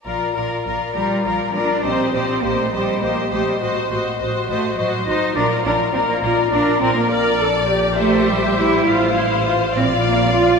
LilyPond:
<<
  \new Staff \with { instrumentName = "Violin section" } { \time 6/8 \key bes \major \tempo 4. = 68 d''8 d''8 d''8 d''8 d''8 d''8 | ees''8 ees''8 ees''8 ees''8 ees''8 ees''8 | ees''8 ees''8 ees''8 ees''8 ees''8 ees''8 | d''8 d''8 d''8 d''8 d''8 d''8 |
\key f \major d''4. e''4. | f''4. f''4. | }
  \new Staff \with { instrumentName = "Violin section" } { \time 6/8 \key bes \major bes'8 bes'8 bes'8 bes'8 bes'8 bes'8 | c''8 c''8 c''8 c''8 c''8 c''8 | c''8 c''8 c''8 c''8 c''8 c''8 | bes'8 bes'8 bes'8 bes'8 bes'8 bes'8 |
\key f \major d''4. c''4. | c''4. d''4. | }
  \new Staff \with { instrumentName = "Viola section" } { \time 6/8 \key bes \major f'8 f'8 f'8 f'8 f'8 f'8 | g'8 g'8 g'8 g'8 g'8 g'8 | fis'8 fis'8 fis'8 fis'8 fis'8 fis'8 | f'8 f'8 f'8 f'8 f'8 f'8 |
\key f \major bes'8 a'8 g'2 | f'8 e'8 f'8 f'4. | }
  \new Staff \with { instrumentName = "Cello section" } { \time 6/8 \key bes \major r4. g8 f8 d'8 | c'8 c'8 bes16 a16 g8 bes8 a16 g16 | r4. a8 fis8 ees'8 | d'8 d'8 c'16 bes16 bes8 d'8 c'16 bes16 |
\key f \major r4. a8 g8 e'8 | r4. c'8 bes8 f'8 | }
  \new Staff \with { instrumentName = "Double bass section" } { \clef bass \time 6/8 \key bes \major bes,,8 bes,,8 bes,,8 bes,,8 bes,,8 bes,,8 | bes,,8 bes,,8 bes,,8 bes,,8 bes,,8 bes,,8 | a,,8 a,,8 a,,8 a,,8 a,,8 a,,8 | bes,,8 bes,,8 bes,,8 bes,,8 bes,,8 bes,,8 |
\key f \major bes,,2. | a,,4. bes,,4. | }
>>